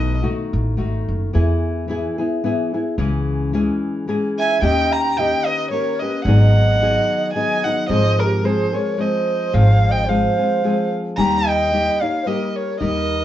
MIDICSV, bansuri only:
0, 0, Header, 1, 2, 480
1, 0, Start_track
1, 0, Key_signature, 5, "minor"
1, 0, Tempo, 546448
1, 1168, Time_signature, 3, 2, 24, 8
1, 6932, Key_signature, -4, "major"
1, 11635, End_track
2, 0, Start_track
2, 0, Title_t, "Bansuri"
2, 0, Program_c, 0, 73
2, 0, Note_on_c, 0, 71, 63
2, 157, Note_off_c, 0, 71, 0
2, 3852, Note_on_c, 0, 76, 77
2, 4048, Note_off_c, 0, 76, 0
2, 4063, Note_on_c, 0, 75, 89
2, 4323, Note_on_c, 0, 79, 96
2, 4336, Note_off_c, 0, 75, 0
2, 4555, Note_on_c, 0, 75, 75
2, 4568, Note_off_c, 0, 79, 0
2, 4806, Note_on_c, 0, 71, 62
2, 4819, Note_off_c, 0, 75, 0
2, 5014, Note_off_c, 0, 71, 0
2, 5020, Note_on_c, 0, 70, 76
2, 5289, Note_on_c, 0, 71, 63
2, 5302, Note_off_c, 0, 70, 0
2, 5489, Note_off_c, 0, 71, 0
2, 5494, Note_on_c, 0, 74, 66
2, 5591, Note_off_c, 0, 74, 0
2, 5591, Note_on_c, 0, 75, 66
2, 6417, Note_off_c, 0, 75, 0
2, 6450, Note_on_c, 0, 75, 71
2, 6705, Note_off_c, 0, 75, 0
2, 6705, Note_on_c, 0, 75, 64
2, 6912, Note_off_c, 0, 75, 0
2, 6918, Note_on_c, 0, 72, 69
2, 7196, Note_on_c, 0, 68, 61
2, 7209, Note_off_c, 0, 72, 0
2, 7229, Note_on_c, 0, 67, 67
2, 7238, Note_off_c, 0, 68, 0
2, 7400, Note_on_c, 0, 69, 57
2, 7413, Note_off_c, 0, 67, 0
2, 7428, Note_on_c, 0, 68, 62
2, 7437, Note_off_c, 0, 69, 0
2, 7664, Note_on_c, 0, 70, 60
2, 7677, Note_off_c, 0, 68, 0
2, 7895, Note_on_c, 0, 72, 75
2, 7909, Note_off_c, 0, 70, 0
2, 8373, Note_off_c, 0, 72, 0
2, 8373, Note_on_c, 0, 72, 83
2, 8697, Note_on_c, 0, 75, 71
2, 8710, Note_off_c, 0, 72, 0
2, 8847, Note_on_c, 0, 72, 63
2, 8860, Note_off_c, 0, 75, 0
2, 9589, Note_off_c, 0, 72, 0
2, 9813, Note_on_c, 0, 80, 69
2, 9845, Note_on_c, 0, 79, 75
2, 9854, Note_off_c, 0, 80, 0
2, 10073, Note_on_c, 0, 75, 84
2, 10086, Note_off_c, 0, 79, 0
2, 10548, Note_on_c, 0, 74, 62
2, 10561, Note_off_c, 0, 75, 0
2, 10576, Note_on_c, 0, 73, 67
2, 10585, Note_off_c, 0, 74, 0
2, 10788, Note_on_c, 0, 70, 70
2, 10801, Note_off_c, 0, 73, 0
2, 11043, Note_off_c, 0, 70, 0
2, 11043, Note_on_c, 0, 70, 60
2, 11250, Note_off_c, 0, 70, 0
2, 11261, Note_on_c, 0, 70, 60
2, 11635, Note_off_c, 0, 70, 0
2, 11635, End_track
0, 0, End_of_file